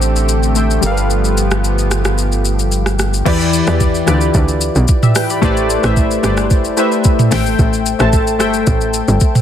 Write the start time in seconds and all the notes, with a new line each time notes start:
Already playing: A1 D3 A3 C4 G4 A4 C5 E5 G5
0.02 shaker
0.16 shaker
0.29 shaker
0.43 shaker
0.55 A3 A4 C5 E5 G5, shaker
0.71 shaker
0.81 G1 F3 G3 B3 G4 A4, shaker
0.85 A#4 F5
0.91 B4
0.97 shaker
1.10 shaker
1.25 shaker
1.37 shaker
1.51 cross-stick, shaker
1.64 shaker
1.78 shaker
1.91 cross-stick, shaker
2.05 cross-stick, shaker
2.18 shaker
2.32 shaker
2.45 shaker
2.59 shaker
2.72 shaker
2.86 cross-stick, shaker
2.99 cross-stick, shaker
3.14 shaker
3.25 E2 E3 E4 G4 B4 D5, kick, crash, shaker
3.41 shaker
3.53 shaker
3.66 E2 E3 E4 G4 B4 D5, cross-stick, shaker
3.80 kick, shaker
3.95 shaker
4.06 D2 E3 E4 F4 B4 D5, cross-stick, shaker
4.14 G4
4.21 shaker
4.34 D2, kick, shaker
4.48 shaker
4.61 shaker
4.75 B1, shaker
4.88 kick, shaker
5.03 G4 E5, mid tom, shaker
5.15 B4 G5, cross-stick, open hi-hat, shaker
5.30 D5 B5, shaker
5.42 A1 A3 E4 G4 B4 C5 D5, kick, shaker
5.57 shaker
5.70 shaker
5.83 A1 A3 E4 G4 B4 C5 E5, cross-stick, shaker
5.97 kick, shaker
6.11 shaker
6.23 G1 A3 E4 G4 B4 C5 D5, cross-stick, shaker
6.37 cross-stick, shaker
6.50 kick, shaker
6.65 shaker
6.77 A3 E4 G4 B4 C5 E5, shaker
6.92 shaker
7.04 kick, shaker
7.19 mid tom, shaker
7.31 A1 A3 A4 C5 E5 G5, cross-stick, snare, open hi-hat, shaker
7.46 shaker
7.59 A1, kick, shaker
7.73 shaker
7.86 shaker
7.99 A1 A3 A4 C5 E5 A5, cross-stick, shaker
8.13 kick, shaker
8.27 shaker
8.39 G1 A3 A4 C5 E5 G5, cross-stick, shaker
8.54 shaker
8.67 A1, kick, shaker
8.81 shaker
8.94 shaker
9.08 G1, shaker
9.20 kick, shaker
9.35 mid tom, shaker